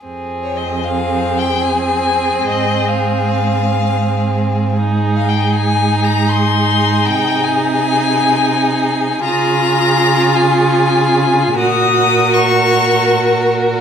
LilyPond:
<<
  \new Staff \with { instrumentName = "Violin" } { \time 3/4 \key f \minor \tempo 4 = 79 \tuplet 3/2 { r8. des''16 ees''8 f''4 g''8 } aes''4 | ees''8 f''2~ f''8 | \tuplet 3/2 { r8. f''16 g''8 aes''4 bes''8 } c'''4 | g''8 aes''2~ aes''8 |
bes''4. aes''4. | ees'''4 des'''4. r8 | }
  \new Staff \with { instrumentName = "Violin" } { \time 3/4 \key f \minor aes'2.~ | aes'2. | aes'2.~ | aes'2. |
aes'2. | bes'2. | }
  \new Staff \with { instrumentName = "Viola" } { \time 3/4 \key f \minor c'2.~ | c'2. | ees'2.~ | ees'2. |
f'2. | ges'2. | }
  \new Staff \with { instrumentName = "Cello" } { \clef bass \time 3/4 \key f \minor f,2. | aes,2.~ | aes,2. | c2. |
des2. | bes,2. | }
>>